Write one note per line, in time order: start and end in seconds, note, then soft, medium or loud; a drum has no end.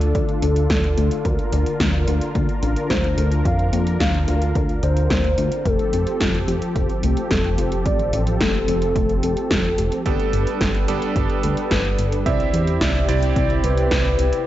0.00 0.13 D2 medium
0.00 5.61 D3 medium
0.00 5.61 D4 medium
0.00 5.61 F4 medium
0.00 0.13 A4 medium
0.00 0.32 A4 loud
0.00 1.21 A4 medium
0.00 closed hi-hat medium
0.15 0.40 D2 medium
0.15 0.32 D5 medium
0.15 kick loud
0.15 closed hi-hat soft
0.29 closed hi-hat soft
0.42 0.68 D2 medium
0.42 0.68 D4 loud
0.42 1.27 A4 loud
0.42 closed hi-hat medium
0.56 closed hi-hat soft
0.70 0.95 D2 medium
0.70 0.80 D5 medium
0.70 kick loud
0.70 snare loud
0.70 closed hi-hat medium
0.84 closed hi-hat soft
0.98 1.10 D2 medium
0.98 1.08 A3 medium
0.98 closed hi-hat medium
1.11 closed hi-hat medium
1.25 1.38 D2 loud
1.25 1.50 A#4 loud
1.25 1.97 A#4 loud
1.25 5.62 A#4 medium
1.25 kick loud
1.25 closed hi-hat medium
1.39 closed hi-hat soft
1.53 1.65 D2 medium
1.53 1.70 D5 medium
1.53 closed hi-hat medium
1.66 closed hi-hat soft
1.80 2.05 D2 medium
1.80 1.97 A#3 medium
1.80 kick loud
1.80 snare loud
1.80 closed hi-hat soft
1.94 closed hi-hat soft
2.08 2.20 D2 medium
2.08 2.33 D4 medium
2.08 closed hi-hat medium
2.21 closed hi-hat medium
2.35 2.48 D2 medium
2.35 2.61 A#3 medium
2.35 kick loud
2.35 closed hi-hat soft
2.49 closed hi-hat soft
2.63 2.75 A1 medium
2.63 2.73 D4 medium
2.63 closed hi-hat medium
2.76 closed hi-hat soft
2.90 3.16 D2 loud
2.90 3.07 F4 medium
2.90 3.24 C5 medium
2.90 kick loud
2.90 snare loud
2.90 closed hi-hat medium
3.04 closed hi-hat soft
3.18 3.43 D2 medium
3.18 3.43 A#4 medium
3.18 closed hi-hat medium
3.32 closed hi-hat soft
3.45 3.71 F2 medium
3.45 3.62 D5 medium
3.45 3.79 F5 medium
3.45 kick loud
3.45 closed hi-hat soft
3.59 closed hi-hat soft
3.73 3.98 F2 loud
3.73 3.83 A#3 medium
3.73 closed hi-hat medium
3.87 closed hi-hat soft
4.00 4.26 D2 loud
4.00 4.26 D4 medium
4.00 4.72 F5 loud
4.00 kick loud
4.00 snare loud
4.00 closed hi-hat soft
4.14 closed hi-hat soft
4.28 4.53 D2 loud
4.28 4.45 F4 medium
4.28 closed hi-hat medium
4.42 closed hi-hat soft
4.55 4.81 D2 medium
4.55 4.81 A#4 loud
4.55 kick loud
4.55 closed hi-hat soft
4.69 closed hi-hat soft
4.83 5.08 D2 medium
4.83 5.67 C5 loud
4.83 5.00 D5 medium
4.83 closed hi-hat medium
4.97 closed hi-hat soft
5.10 5.36 D2 medium
5.10 5.27 A#3 medium
5.10 kick loud
5.10 snare loud
5.10 closed hi-hat soft
5.24 closed hi-hat soft
5.38 5.51 D2 medium
5.38 5.63 D4 medium
5.38 closed hi-hat medium
5.52 closed hi-hat soft
5.65 5.78 F1 medium
5.65 10.02 F3 medium
5.65 5.91 A3 medium
5.65 10.02 C4 medium
5.65 10.02 G4 medium
5.65 6.37 A4 loud
5.65 10.02 A4 medium
5.65 kick loud
5.65 closed hi-hat soft
5.79 closed hi-hat soft
5.93 6.06 F1 medium
5.93 6.03 C4 medium
5.93 closed hi-hat medium
6.07 closed hi-hat soft
6.20 6.46 F1 medium
6.20 6.37 F4 medium
6.20 kick loud
6.20 snare loud
6.20 closed hi-hat soft
6.34 closed hi-hat soft
6.48 6.61 F1 medium
6.48 6.73 G4 medium
6.48 closed hi-hat medium
6.62 closed hi-hat medium
6.75 6.88 F1 medium
6.75 6.92 A4 medium
6.75 kick loud
6.75 closed hi-hat medium
6.89 closed hi-hat soft
7.03 7.16 C2 medium
7.03 7.13 A3 medium
7.03 closed hi-hat medium
7.17 closed hi-hat soft
7.31 7.56 F1 loud
7.31 7.56 C4 medium
7.31 7.65 A4 medium
7.31 kick loud
7.31 snare loud
7.31 closed hi-hat soft
7.44 closed hi-hat soft
7.58 7.83 F1 medium
7.58 7.75 F4 medium
7.58 closed hi-hat medium
7.72 closed hi-hat medium
7.86 8.11 A1 medium
7.86 8.11 G4 loud
7.86 8.20 D5 medium
7.86 kick loud
7.86 closed hi-hat medium
7.99 closed hi-hat soft
8.13 8.38 A1 loud
8.13 8.30 A4 medium
8.13 closed hi-hat medium
8.27 closed hi-hat medium
8.41 8.66 F1 loud
8.41 8.58 A3 medium
8.41 9.12 A4 loud
8.41 kick loud
8.41 snare loud
8.41 closed hi-hat medium
8.54 closed hi-hat soft
8.68 8.94 F1 loud
8.68 8.94 C4 medium
8.68 closed hi-hat medium
8.82 closed hi-hat medium
8.96 9.21 F1 loud
8.96 9.21 A3 medium
8.96 kick loud
8.96 closed hi-hat medium
9.09 closed hi-hat soft
9.23 9.36 F1 loud
9.23 9.33 C4 medium
9.23 9.95 A4 loud
9.23 closed hi-hat medium
9.37 closed hi-hat medium
9.51 9.76 F1 medium
9.51 9.68 F4 medium
9.51 kick loud
9.51 snare loud
9.51 closed hi-hat medium
9.65 closed hi-hat soft
9.78 9.91 F1 medium
9.78 10.04 G4 medium
9.78 closed hi-hat medium
9.92 closed hi-hat medium
10.06 10.18 G1 loud
10.06 12.24 G3 medium
10.06 10.31 A3 medium
10.06 10.85 B3 medium
10.06 12.24 D4 medium
10.06 10.85 D4 medium
10.06 10.85 G4 medium
10.06 12.24 A4 medium
10.06 10.77 A4 loud
10.06 10.85 A4 medium
10.06 12.24 B4 medium
10.06 kick loud
10.06 closed hi-hat medium
10.20 closed hi-hat soft
10.33 10.46 G1 medium
10.33 10.43 B3 medium
10.33 closed hi-hat medium
10.47 closed hi-hat medium
10.61 10.86 G1 medium
10.61 kick loud
10.61 snare loud
10.61 closed hi-hat medium
10.75 closed hi-hat soft
10.88 11.01 G1 medium
10.88 12.23 B3 medium
10.88 12.23 D4 medium
10.88 12.23 G4 medium
10.88 12.23 A4 medium
10.88 closed hi-hat medium
11.02 closed hi-hat medium
11.16 11.29 G1 medium
11.16 kick loud
11.16 closed hi-hat medium
11.30 closed hi-hat soft
11.43 11.56 D2 medium
11.43 11.54 A3 medium
11.43 closed hi-hat medium
11.57 closed hi-hat medium
11.71 11.96 G1 loud
11.71 11.96 B3 medium
11.71 12.05 B4 medium
11.71 kick loud
11.71 snare loud
11.71 closed hi-hat medium
11.85 closed hi-hat soft
11.98 12.24 G1 medium
11.98 12.15 D4 medium
11.98 closed hi-hat medium
12.12 closed hi-hat medium
12.26 12.51 C2 medium
12.26 14.47 C3 medium
12.26 13.05 C4 medium
12.26 14.44 C4 medium
12.26 13.05 E4 medium
12.26 14.44 E4 medium
12.26 13.05 G4 medium
12.26 14.44 G4 medium
12.26 12.51 C5 loud
12.26 12.60 D5 medium
12.26 13.05 E5 medium
12.26 kick loud
12.26 closed hi-hat medium
12.40 closed hi-hat soft
12.54 12.79 E2 loud
12.54 closed hi-hat medium
12.67 closed hi-hat medium
12.81 13.06 C2 loud
12.81 12.98 C4 medium
12.81 13.53 D5 loud
12.81 kick loud
12.81 snare loud
12.81 closed hi-hat medium
12.95 closed hi-hat soft
13.09 13.34 C2 medium
13.09 14.43 C4 medium
13.09 13.34 E4 medium
13.09 14.43 E4 medium
13.09 14.43 G4 medium
13.09 14.43 D5 loud
13.09 closed hi-hat loud
13.22 closed hi-hat medium
13.36 13.61 C2 medium
13.36 13.62 C4 medium
13.36 kick loud
13.36 closed hi-hat medium
13.50 closed hi-hat soft
13.64 13.89 C2 medium
13.64 13.74 E4 medium
13.64 14.47 B4 loud
13.64 closed hi-hat medium
13.78 closed hi-hat medium
13.91 14.16 C2 medium
13.91 14.08 G4 medium
13.91 kick loud
13.91 snare loud
13.91 closed hi-hat medium
14.05 closed hi-hat soft
14.19 14.31 C2 medium
14.19 closed hi-hat medium
14.33 closed hi-hat medium